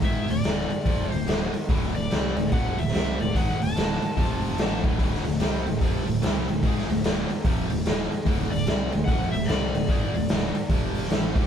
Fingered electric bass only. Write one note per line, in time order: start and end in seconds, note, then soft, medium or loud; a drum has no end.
0.02 0.27 G#1 medium
0.29 0.44 D1 medium
0.46 0.69 D1 medium
0.72 muted fingered electric bass stroke soft
0.86 1.10 F1 medium
1.13 1.27 D1 medium
1.28 1.52 D1 medium
1.55 muted fingered electric bass stroke soft
1.69 1.93 D1 medium
1.96 2.10 D1 medium
2.12 2.35 C2 medium
2.38 2.51 D1 medium
2.52 2.76 F1 medium
2.78 2.92 D1 medium
2.94 3.18 C2 medium
3.20 3.34 D1 medium
3.35 3.59 G#1 medium
3.61 3.75 D1 medium
3.77 4.01 D1 medium
4.03 muted fingered electric bass stroke soft
4.18 4.56 F1 medium
4.59 4.83 A1 medium
4.84 4.98 D1 medium
5.00 5.23 D1 medium
5.26 5.40 D1 medium
5.41 5.65 C2 medium
5.67 5.81 D1 medium
5.81 6.05 F1 medium
6.07 6.21 D1 medium
6.22 6.46 C2 medium
6.48 6.62 D1 medium
6.63 6.87 G#1 medium
6.88 7.03 D1 medium
7.04 7.28 D1 medium
7.30 muted fingered electric bass stroke soft
7.45 7.69 F1 medium
7.71 7.85 D1 medium
7.86 8.10 D1 medium
8.12 muted fingered electric bass stroke soft
8.27 8.50 D1 medium
8.53 8.66 D1 medium
8.67 8.91 C2 medium
8.93 9.07 D1 medium
9.08 9.32 F1 medium
9.33 9.47 D1 medium
9.49 9.73 C2 medium
9.75 9.88 D1 medium
9.89 10.13 G#1 medium
10.15 10.29 D1 medium
10.30 10.54 D1 medium
10.56 muted fingered electric bass stroke soft
10.70 11.08 F1 medium
11.11 11.34 A1 medium
11.36 11.47 D1 medium